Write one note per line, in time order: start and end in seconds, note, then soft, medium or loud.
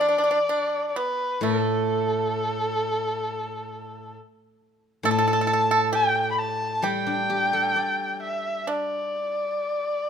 0.00 0.48 E3 soft
0.00 0.07 D4 soft
0.00 0.88 D5 medium
0.09 0.15 D4 soft
0.18 0.22 D4 soft
0.24 0.30 D4 soft
0.31 0.38 D4 medium
0.49 0.93 D4 medium
0.88 0.98 D5 medium
0.96 1.39 B3 medium
0.96 1.45 B4 medium
1.41 4.15 A2 soft
1.41 4.12 A3 medium
1.41 4.16 A4 medium
5.03 7.75 A2 soft
5.03 5.10 A4 medium
5.03 5.91 A5 medium
5.11 5.17 A4 medium
5.18 5.26 A4 medium
5.28 5.32 A4 medium
5.33 5.40 A4 medium
5.41 5.46 A4 medium
5.47 5.52 A4 medium
5.53 5.61 A4 medium
5.71 5.92 A4 medium
5.93 6.79 G4 medium
5.93 6.30 G5 medium
6.31 6.40 B5 medium
6.38 6.85 A5 medium
6.82 9.57 G3 medium
6.82 8.63 G4 medium
6.82 8.22 G5 medium
7.07 8.90 D4 soft
7.30 9.13 G4 soft
7.53 9.36 A4 soft
7.76 9.58 D5 soft
8.23 8.71 E5 medium
8.67 10.10 D4 medium
8.67 10.10 D5 medium